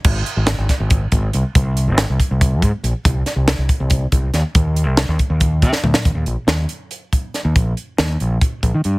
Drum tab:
CC |x-------------|--------------|--------------|--------------|
HH |--x-x-x-x-x-x-|x-x-x-x-x-x-x-|x-x-x-x-x-x-x-|x-x-x-x-x-x---|
SD |----o-o-------|----o---------|--o-o-------o-|----o------o-o|
T2 |--------------|--------------|--------------|------------o-|
BD |o-----o-o-o---|o-----o-o-o---|o-----o-o-o---|o-----o-o-o---|

CC |--------------|--------------|
HH |x-x-x-x-x-x-x-|x-x-x-x-x-x-x-|
SD |----o-------o-|----o---------|
T2 |--------------|--------------|
BD |o---------o---|o-------o-o---|